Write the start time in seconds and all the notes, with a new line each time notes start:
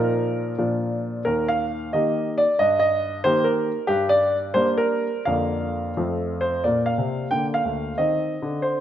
Already playing: A#2 F3 D#4 F4 A#4
0.58 A#2 F3 D4 F4
1.25 D#2 A#4
1.48 F5
1.93 D#3 A#3 G4 D#5
2.38 D5
2.59 G2 D#5
2.79 D#5
3.24 D#3 A#3 G4 C5
3.44 A#4
3.87 G2 G4
4.09 D5
4.54 G3 A#3 D4 C5
4.78 A#4
5.25 F2 D3 A#3 D4 F5
5.97 F2 F3 A3 C4
6.41 C5
6.64 A#2 A#3 D5
6.86 F5
6.98 C3
7.31 D3 A#3 G5
7.54 F5
7.65 D2
7.98 D#3 C4 D#5
8.42 D3
8.62 C5